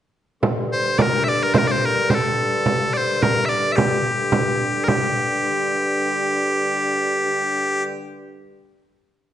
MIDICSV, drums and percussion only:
0, 0, Header, 1, 2, 480
1, 0, Start_track
1, 0, Key_signature, -2, "minor"
1, 0, Tempo, 557103
1, 369, Time_signature, 2, 2, 24, 8
1, 4206, Tempo, 544959
1, 8129, End_track
2, 0, Start_track
2, 0, Title_t, "Frame drum"
2, 369, Note_on_c, 9, 64, 73
2, 455, Note_off_c, 9, 64, 0
2, 850, Note_on_c, 9, 64, 79
2, 937, Note_off_c, 9, 64, 0
2, 1330, Note_on_c, 9, 64, 81
2, 1416, Note_off_c, 9, 64, 0
2, 1809, Note_on_c, 9, 64, 71
2, 1895, Note_off_c, 9, 64, 0
2, 2290, Note_on_c, 9, 64, 68
2, 2377, Note_off_c, 9, 64, 0
2, 2779, Note_on_c, 9, 64, 69
2, 2866, Note_off_c, 9, 64, 0
2, 3256, Note_on_c, 9, 64, 73
2, 3342, Note_off_c, 9, 64, 0
2, 3499, Note_on_c, 9, 64, 20
2, 3585, Note_off_c, 9, 64, 0
2, 3723, Note_on_c, 9, 64, 77
2, 3810, Note_off_c, 9, 64, 0
2, 4207, Note_on_c, 9, 64, 74
2, 4295, Note_off_c, 9, 64, 0
2, 8129, End_track
0, 0, End_of_file